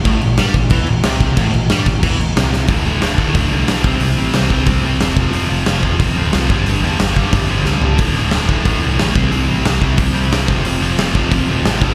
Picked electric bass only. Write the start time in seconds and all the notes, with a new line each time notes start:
0.05 A1
0.23 A1
0.40 G2
0.54 A1
0.71 E2
0.89 A1
1.04 C2
1.37 A1
1.54 A1
1.70 G2
1.86 A1
2.03 E2
2.18 A1
2.36 C2
2.69 D1
2.86 D1
3.01 D1
3.18 D1
3.34 D1
3.52 C2
3.66 B1
3.85 C2
4.00 C2
4.17 A1
4.33 C2
4.50 C2
4.66 C2
4.84 C2
5.01 E1
5.16 F1
5.33 F1
5.50 F1
5.65 F1
5.83 F1
5.99 F1
6.17 D1
6.34 C2
6.50 G1
6.66 G1
6.83 E2
7.00 G1
7.16 G1
7.32 G1
7.49 G1
7.65 C#2
7.99 D1
8.17 D1
8.32 D1
8.49 D1
8.65 D1
8.84 C2
8.99 A1
9.15 C2
9.32 C2
9.49 A1
9.65 C2
9.81 C2
9.98 C2
10.15 C2
10.32 C2
10.49 F1
10.63 F1
10.81 F1
10.98 F1
11.15 F1
11.31 F1
11.48 D1
11.66 A1
11.81 G1